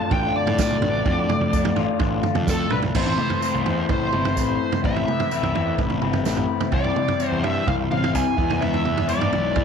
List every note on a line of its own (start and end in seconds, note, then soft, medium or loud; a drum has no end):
0.00 1.05 A2 medium
0.00 0.56 A3 medium
0.00 2.91 A3 medium
0.00 2.91 D4 medium
0.00 1.05 F4 medium
0.00 2.91 F4 medium
0.00 2.91 A4 medium
0.10 0.31 A1 medium
0.10 0.81 D4 medium
0.10 0.35 G5 medium
0.10 kick loud
0.10 floor tom medium
0.34 1.52 D3 medium
0.34 0.58 D5 medium
0.46 0.76 A2 medium
0.46 floor tom medium
0.56 1.27 A3 medium
0.56 1.97 D5 loud
0.56 kick loud
0.56 snare medium
0.56 tambourine loud
0.71 mid tom medium
0.82 1.01 A1 medium
0.82 1.51 D4 medium
0.82 floor tom medium
1.05 1.25 F2 medium
1.05 2.23 A2 medium
1.05 kick loud
1.05 floor tom medium
1.28 2.46 A3 medium
1.28 floor tom medium
1.28 mid tom medium
1.41 1.70 F2 medium
1.52 1.98 D4 medium
1.52 kick loud
1.52 tambourine medium
1.65 floor tom medium
1.76 1.86 A1 medium
1.76 2.94 F4 medium
1.76 floor tom medium
1.99 2.20 A1 medium
1.99 2.70 D4 medium
1.99 kick loud
1.99 floor tom medium
2.23 2.94 D3 medium
2.23 floor tom medium
2.35 2.65 F2 medium
2.35 floor tom medium
2.35 mid tom medium
2.47 2.95 A3 medium
2.47 2.70 A4 medium
2.47 kick loud
2.47 snare medium
2.47 tambourine loud
2.70 2.91 C2 medium
2.70 2.95 D4 medium
2.70 2.78 B4 medium
2.70 mid tom medium
2.82 floor tom medium
2.95 3.14 A1 medium
2.95 3.40 A2 medium
2.95 3.41 E3 medium
2.95 3.19 A3 medium
2.95 3.19 C4 loud
2.95 3.18 E4 loud
2.95 3.17 B4 medium
2.95 3.86 C5 medium
2.95 9.64 E5 medium
2.95 4.82 A5 medium
2.95 6.69 B5 medium
2.95 kick loud
2.95 floor tom medium
2.95 crash medium
3.06 floor tom medium
3.18 3.41 A3 medium
3.18 3.41 C4 medium
3.18 3.42 E4 medium
3.18 3.42 B4 medium
3.18 mid tom medium
3.30 floor tom medium
3.41 4.15 A2 medium
3.41 4.82 E3 medium
3.41 3.66 A3 medium
3.41 3.65 C4 medium
3.41 3.65 E4 medium
3.41 3.64 B4 medium
3.41 tambourine medium
3.54 3.64 C2 medium
3.64 3.85 E2 medium
3.64 4.13 A3 medium
3.64 4.13 C4 medium
3.64 4.13 E4 medium
3.64 4.11 B4 medium
3.64 floor tom medium
3.89 4.09 A1 medium
3.89 4.80 C5 medium
3.89 kick loud
3.89 floor tom medium
3.89 mid tom medium
4.12 4.37 G1 medium
4.12 4.34 A3 medium
4.12 4.36 C4 medium
4.12 4.36 E4 medium
4.12 4.36 B4 medium
4.12 mid tom medium
4.25 floor tom medium
4.35 4.56 A1 medium
4.35 4.82 A3 medium
4.35 4.83 C4 medium
4.35 4.83 E4 medium
4.35 4.83 B4 medium
4.35 kick medium
4.35 tambourine medium
4.72 floor tom medium
4.72 mid tom medium
4.82 5.03 A1 medium
4.82 5.29 A2 medium
4.82 5.30 E3 medium
4.82 5.07 A3 medium
4.82 5.08 C4 loud
4.82 5.06 E4 medium
4.82 5.05 B4 medium
4.82 5.75 E5 medium
4.82 8.34 G5 medium
4.82 kick loud
4.82 floor tom medium
4.96 floor tom medium
5.06 5.30 A3 medium
5.06 5.31 C4 medium
5.06 5.32 E4 medium
5.06 5.30 B4 medium
5.06 mid tom medium
5.20 floor tom medium
5.30 5.78 A2 medium
5.30 6.71 E3 medium
5.30 5.54 A3 medium
5.30 5.54 C4 medium
5.30 5.53 E4 medium
5.30 5.52 B4 loud
5.30 tambourine medium
5.42 5.52 C2 medium
5.42 floor tom medium
5.53 5.74 E2 medium
5.53 6.02 A3 medium
5.53 6.01 C4 medium
5.53 6.02 E4 medium
5.53 6.00 B4 medium
5.53 floor tom medium
5.78 5.97 A1 medium
5.78 kick medium
5.78 floor tom medium
5.78 mid tom medium
5.90 floor tom medium
6.01 6.25 G1 medium
6.01 6.24 A3 soft
6.01 6.24 C4 medium
6.01 6.26 E4 medium
6.01 6.25 B4 medium
6.01 mid tom medium
6.13 floor tom medium
6.25 6.45 A1 medium
6.25 6.71 A3 medium
6.25 6.71 C4 medium
6.25 6.73 E4 medium
6.25 6.72 B4 medium
6.25 snare medium
6.25 tambourine medium
6.37 floor tom medium
6.61 floor tom medium
6.61 mid tom medium
6.71 6.92 C2 medium
6.71 7.18 C3 medium
6.71 7.19 E3 medium
6.71 6.96 G3 loud
6.71 6.95 C4 loud
6.71 6.95 E4 loud
6.71 7.27 D5 medium
6.71 8.36 C6 medium
6.71 kick loud
6.71 floor tom medium
6.84 floor tom medium
6.95 7.19 G3 medium
6.95 7.19 C4 medium
6.95 7.21 E4 medium
6.95 mid tom medium
7.08 floor tom medium
7.19 7.66 C3 medium
7.19 8.13 E3 medium
7.19 7.44 G3 loud
7.19 7.43 C4 medium
7.19 7.42 E4 loud
7.19 tambourine medium
7.27 7.41 E2 medium
7.27 7.44 C5 medium
7.43 7.62 G2 medium
7.43 7.91 G3 medium
7.43 7.90 C4 medium
7.43 7.90 E4 medium
7.43 7.67 E5 medium
7.43 floor tom medium
7.67 7.87 C2 medium
7.67 7.74 F5 medium
7.67 kick loud
7.67 floor tom medium
7.67 mid tom medium
7.91 8.15 A1 medium
7.91 8.13 G3 medium
7.91 8.13 C4 medium
7.91 8.14 E4 medium
7.91 8.13 F5 medium
7.91 mid tom medium
8.04 floor tom medium
8.13 8.24 C2 medium
8.13 8.38 E3 medium
8.13 8.36 G3 medium
8.13 8.36 C4 medium
8.13 8.36 E4 medium
8.13 8.58 G#5 loud
8.13 kick medium
8.13 tambourine medium
8.37 9.21 E2 medium
8.37 8.59 E3 medium
8.37 8.59 G#3 medium
8.37 8.60 B3 medium
8.37 8.61 E4 medium
8.37 9.64 B4 medium
8.37 9.64 G#5 medium
8.37 9.64 B5 medium
8.37 kick loud
8.50 floor tom medium
8.50 mid tom medium
8.60 9.06 E3 medium
8.60 8.85 G#3 medium
8.60 8.85 B3 loud
8.60 8.84 E4 medium
8.60 9.09 E5 medium
8.60 floor tom medium
8.74 floor tom medium
8.84 9.06 G#3 medium
8.84 9.08 B3 medium
8.84 9.08 E4 medium
8.84 mid tom medium
8.98 floor tom medium
9.07 9.64 E3 medium
9.07 9.32 G#3 medium
9.07 9.32 B3 medium
9.07 9.31 E4 medium
9.07 9.64 D5 medium
9.07 tambourine medium
9.21 9.30 G#2 medium
9.21 floor tom medium
9.31 9.52 B1 medium
9.31 9.64 G#3 medium
9.31 9.64 B3 medium
9.31 9.64 E4 medium
9.31 floor tom medium
9.56 9.64 E2 medium
9.56 kick loud
9.56 floor tom medium
9.56 mid tom medium